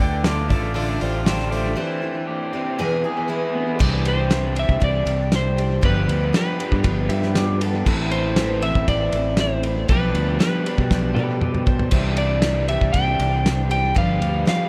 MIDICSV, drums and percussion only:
0, 0, Header, 1, 2, 480
1, 0, Start_track
1, 0, Tempo, 507614
1, 1679, Time_signature, 4, 2, 24, 8
1, 13889, End_track
2, 0, Start_track
2, 0, Title_t, "Drums"
2, 0, Note_on_c, 9, 36, 80
2, 91, Note_off_c, 9, 36, 0
2, 230, Note_on_c, 9, 38, 107
2, 230, Note_on_c, 9, 46, 76
2, 325, Note_off_c, 9, 38, 0
2, 325, Note_off_c, 9, 46, 0
2, 475, Note_on_c, 9, 46, 55
2, 477, Note_on_c, 9, 36, 86
2, 570, Note_off_c, 9, 46, 0
2, 571, Note_off_c, 9, 36, 0
2, 719, Note_on_c, 9, 46, 71
2, 813, Note_off_c, 9, 46, 0
2, 957, Note_on_c, 9, 46, 58
2, 1051, Note_off_c, 9, 46, 0
2, 1196, Note_on_c, 9, 38, 108
2, 1196, Note_on_c, 9, 46, 68
2, 1290, Note_off_c, 9, 38, 0
2, 1290, Note_off_c, 9, 46, 0
2, 1319, Note_on_c, 9, 38, 31
2, 1414, Note_off_c, 9, 38, 0
2, 1441, Note_on_c, 9, 46, 53
2, 1535, Note_off_c, 9, 46, 0
2, 3597, Note_on_c, 9, 36, 105
2, 3597, Note_on_c, 9, 49, 108
2, 3691, Note_off_c, 9, 36, 0
2, 3692, Note_off_c, 9, 49, 0
2, 3833, Note_on_c, 9, 51, 71
2, 3927, Note_off_c, 9, 51, 0
2, 4073, Note_on_c, 9, 38, 107
2, 4073, Note_on_c, 9, 51, 93
2, 4167, Note_off_c, 9, 38, 0
2, 4167, Note_off_c, 9, 51, 0
2, 4314, Note_on_c, 9, 51, 69
2, 4409, Note_off_c, 9, 51, 0
2, 4434, Note_on_c, 9, 36, 85
2, 4529, Note_off_c, 9, 36, 0
2, 4552, Note_on_c, 9, 51, 89
2, 4556, Note_on_c, 9, 36, 100
2, 4647, Note_off_c, 9, 51, 0
2, 4651, Note_off_c, 9, 36, 0
2, 4791, Note_on_c, 9, 51, 69
2, 4886, Note_off_c, 9, 51, 0
2, 5030, Note_on_c, 9, 38, 109
2, 5030, Note_on_c, 9, 51, 88
2, 5124, Note_off_c, 9, 38, 0
2, 5124, Note_off_c, 9, 51, 0
2, 5279, Note_on_c, 9, 51, 66
2, 5374, Note_off_c, 9, 51, 0
2, 5510, Note_on_c, 9, 51, 84
2, 5514, Note_on_c, 9, 36, 107
2, 5605, Note_off_c, 9, 51, 0
2, 5608, Note_off_c, 9, 36, 0
2, 5760, Note_on_c, 9, 51, 66
2, 5855, Note_off_c, 9, 51, 0
2, 5998, Note_on_c, 9, 38, 108
2, 5998, Note_on_c, 9, 51, 94
2, 6093, Note_off_c, 9, 38, 0
2, 6093, Note_off_c, 9, 51, 0
2, 6242, Note_on_c, 9, 51, 70
2, 6336, Note_off_c, 9, 51, 0
2, 6354, Note_on_c, 9, 36, 84
2, 6448, Note_off_c, 9, 36, 0
2, 6469, Note_on_c, 9, 51, 106
2, 6472, Note_on_c, 9, 36, 95
2, 6563, Note_off_c, 9, 51, 0
2, 6566, Note_off_c, 9, 36, 0
2, 6710, Note_on_c, 9, 51, 78
2, 6804, Note_off_c, 9, 51, 0
2, 6833, Note_on_c, 9, 38, 31
2, 6928, Note_off_c, 9, 38, 0
2, 6954, Note_on_c, 9, 38, 105
2, 6954, Note_on_c, 9, 51, 97
2, 7049, Note_off_c, 9, 38, 0
2, 7049, Note_off_c, 9, 51, 0
2, 7197, Note_on_c, 9, 51, 78
2, 7292, Note_off_c, 9, 51, 0
2, 7436, Note_on_c, 9, 36, 105
2, 7436, Note_on_c, 9, 57, 95
2, 7530, Note_off_c, 9, 57, 0
2, 7531, Note_off_c, 9, 36, 0
2, 7673, Note_on_c, 9, 51, 74
2, 7768, Note_off_c, 9, 51, 0
2, 7908, Note_on_c, 9, 38, 113
2, 7908, Note_on_c, 9, 51, 100
2, 8003, Note_off_c, 9, 38, 0
2, 8003, Note_off_c, 9, 51, 0
2, 8154, Note_on_c, 9, 51, 68
2, 8249, Note_off_c, 9, 51, 0
2, 8277, Note_on_c, 9, 36, 86
2, 8372, Note_off_c, 9, 36, 0
2, 8395, Note_on_c, 9, 51, 99
2, 8396, Note_on_c, 9, 36, 96
2, 8490, Note_off_c, 9, 51, 0
2, 8491, Note_off_c, 9, 36, 0
2, 8628, Note_on_c, 9, 51, 75
2, 8723, Note_off_c, 9, 51, 0
2, 8860, Note_on_c, 9, 38, 104
2, 8860, Note_on_c, 9, 51, 88
2, 8954, Note_off_c, 9, 38, 0
2, 8954, Note_off_c, 9, 51, 0
2, 9109, Note_on_c, 9, 51, 70
2, 9204, Note_off_c, 9, 51, 0
2, 9347, Note_on_c, 9, 51, 83
2, 9354, Note_on_c, 9, 36, 102
2, 9441, Note_off_c, 9, 51, 0
2, 9448, Note_off_c, 9, 36, 0
2, 9596, Note_on_c, 9, 51, 69
2, 9690, Note_off_c, 9, 51, 0
2, 9838, Note_on_c, 9, 38, 104
2, 9838, Note_on_c, 9, 51, 94
2, 9933, Note_off_c, 9, 38, 0
2, 9933, Note_off_c, 9, 51, 0
2, 10082, Note_on_c, 9, 51, 72
2, 10177, Note_off_c, 9, 51, 0
2, 10196, Note_on_c, 9, 36, 87
2, 10290, Note_off_c, 9, 36, 0
2, 10315, Note_on_c, 9, 36, 98
2, 10315, Note_on_c, 9, 38, 66
2, 10409, Note_off_c, 9, 36, 0
2, 10409, Note_off_c, 9, 38, 0
2, 10558, Note_on_c, 9, 47, 75
2, 10652, Note_off_c, 9, 47, 0
2, 10793, Note_on_c, 9, 45, 82
2, 10888, Note_off_c, 9, 45, 0
2, 10917, Note_on_c, 9, 45, 78
2, 11012, Note_off_c, 9, 45, 0
2, 11034, Note_on_c, 9, 36, 102
2, 11129, Note_off_c, 9, 36, 0
2, 11153, Note_on_c, 9, 43, 83
2, 11248, Note_off_c, 9, 43, 0
2, 11263, Note_on_c, 9, 51, 103
2, 11263, Note_on_c, 9, 57, 92
2, 11271, Note_on_c, 9, 36, 106
2, 11357, Note_off_c, 9, 51, 0
2, 11357, Note_off_c, 9, 57, 0
2, 11366, Note_off_c, 9, 36, 0
2, 11505, Note_on_c, 9, 51, 76
2, 11599, Note_off_c, 9, 51, 0
2, 11744, Note_on_c, 9, 38, 111
2, 11744, Note_on_c, 9, 51, 102
2, 11839, Note_off_c, 9, 38, 0
2, 11839, Note_off_c, 9, 51, 0
2, 11994, Note_on_c, 9, 51, 76
2, 12089, Note_off_c, 9, 51, 0
2, 12117, Note_on_c, 9, 36, 90
2, 12211, Note_off_c, 9, 36, 0
2, 12232, Note_on_c, 9, 51, 100
2, 12237, Note_on_c, 9, 36, 93
2, 12327, Note_off_c, 9, 51, 0
2, 12332, Note_off_c, 9, 36, 0
2, 12478, Note_on_c, 9, 51, 71
2, 12573, Note_off_c, 9, 51, 0
2, 12727, Note_on_c, 9, 38, 105
2, 12727, Note_on_c, 9, 51, 88
2, 12821, Note_off_c, 9, 38, 0
2, 12821, Note_off_c, 9, 51, 0
2, 12962, Note_on_c, 9, 51, 70
2, 13057, Note_off_c, 9, 51, 0
2, 13203, Note_on_c, 9, 36, 104
2, 13203, Note_on_c, 9, 51, 88
2, 13298, Note_off_c, 9, 36, 0
2, 13298, Note_off_c, 9, 51, 0
2, 13444, Note_on_c, 9, 51, 65
2, 13538, Note_off_c, 9, 51, 0
2, 13686, Note_on_c, 9, 38, 104
2, 13686, Note_on_c, 9, 51, 91
2, 13781, Note_off_c, 9, 38, 0
2, 13781, Note_off_c, 9, 51, 0
2, 13889, End_track
0, 0, End_of_file